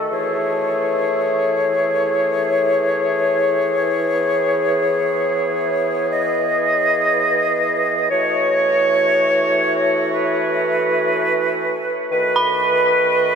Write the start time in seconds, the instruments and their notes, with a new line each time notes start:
Already playing: woodwind section A3
0.11 woodwind section E3 G#4 C#5
4.11 woodwind section B3
6.11 woodwind section D#5
8.11 woodwind section E3 A3 F#4 C#5
10.11 woodwind section B4
12.11 woodwind section D#3 A3 F#4 B4
12.36 synth bell B5